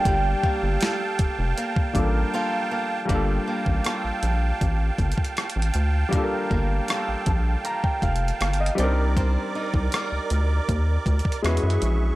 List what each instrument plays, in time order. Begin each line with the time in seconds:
Already playing: grand piano G3 A#3 D4 F4 A4, accordion F5 G5 A5, soft synth lead G5
0.05 analog synth bass G1, steel-string acoustic guitar G3, kick, closed hi-hat
0.44 steel-string acoustic guitar A#3, kick
0.63 analog synth bass G1
0.81 steel-string acoustic guitar A4, snare, closed hi-hat
1.19 analog synth bass F1, kick, closed hi-hat
1.39 analog synth bass F1
1.58 steel-string acoustic guitar A#3, closed hi-hat
1.76 kick
1.93 analog synth bass A1, grand piano G3 A#3 D4 F4, kick, closed hi-hat
1.98 grand piano A4
2.04 grand piano A#4
2.34 steel-string acoustic guitar A#3 F4 A4
2.71 steel-string acoustic guitar A#3
3.05 grand piano G3 A#3, accordion F5 G5 A5, kick
3.09 analog synth bass G1, steel-string acoustic guitar G3, grand piano D4 F4, closed hi-hat
3.14 grand piano A4
3.47 steel-string acoustic guitar A#3
3.66 analog synth bass A1, kick
3.84 steel-string acoustic guitar A#3 F4 A4, cross-stick, closed hi-hat
4.04 analog synth bass A#1
4.23 analog synth bass A#1, closed hi-hat
4.61 analog synth bass A1, kick, closed hi-hat
4.98 analog synth bass G1, kick, closed hi-hat
5.12 closed hi-hat
5.18 kick
5.24 closed hi-hat
5.37 cross-stick, closed hi-hat
5.50 closed hi-hat
5.56 analog synth bass A1
5.62 closed hi-hat
5.74 analog synth bass D2, closed hi-hat
6.09 grand piano G3 A#3, kick, closed hi-hat
6.13 steel-string acoustic guitar G3, grand piano D4 F4
6.17 grand piano A4
6.24 grand piano A#4
6.51 analog synth bass G1, steel-string acoustic guitar A#3, kick
6.88 steel-string acoustic guitar A#3 F4 A4, cross-stick, closed hi-hat
7.08 analog synth bass A#1
7.26 analog synth bass A#1, grand piano A5, kick, closed hi-hat
7.65 grand piano A#5, closed hi-hat
7.84 grand piano G5, kick
8.02 analog synth bass F1, grand piano F5, kick, closed hi-hat
8.16 closed hi-hat
8.28 closed hi-hat
8.41 analog synth bass G1, grand piano F5, cross-stick, closed hi-hat
8.53 closed hi-hat
8.60 grand piano D#5
8.66 closed hi-hat
8.75 analog synth bass C2, grand piano G3 C4, accordion A#4 D5 D6, closed hi-hat
8.79 steel-string acoustic guitar C4, grand piano D4 D#4 D5
8.84 grand piano A#4
9.17 steel-string acoustic guitar C4, kick, closed hi-hat
9.55 steel-string acoustic guitar D#4
9.74 analog synth bass C2, kick
9.92 steel-string acoustic guitar D#4 A#4 D5, cross-stick, closed hi-hat
10.12 analog synth bass D2
10.30 analog synth bass D2, closed hi-hat
10.69 analog synth bass D#2, kick, closed hi-hat
11.06 analog synth bass D2, kick, closed hi-hat
11.19 closed hi-hat
11.25 kick
11.32 closed hi-hat
11.42 analog synth bass E2, steel-string acoustic guitar E3, grand piano G#3 C#4 E4 F#4, accordion G#4 E5 C#6, cross-stick, closed hi-hat
11.47 grand piano B4
11.57 closed hi-hat
11.63 analog synth bass F#2
11.70 closed hi-hat
11.82 analog synth bass A#1, closed hi-hat